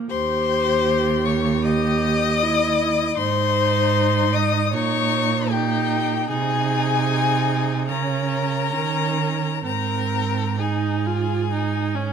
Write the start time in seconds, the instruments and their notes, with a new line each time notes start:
0.09 cello D#2, viola G4, violin C5 C6
1.24 violin C#5 C#6
1.63 viola G4, violin D#5 D#6
2.42 viola E4
3.17 cello G#2, viola D#4, violin C5 C6
4.32 violin D#5 D#6
4.72 cello A#2, viola D#4, violin C#5 C#6
5.50 viola D#4, violin G4 G5
6.28 cello C3, viola D#4, violin G#4 G#5
7.88 cello C#3, viola C#4, violin A#4 A#5
8.72 cello D#3, viola C#4
9.64 cello G#2, viola C4, violin A#4 A#5
10.59 viola D#4, violin G#4 G#5
11.06 viola F4
11.51 viola D#4
11.95 viola C#4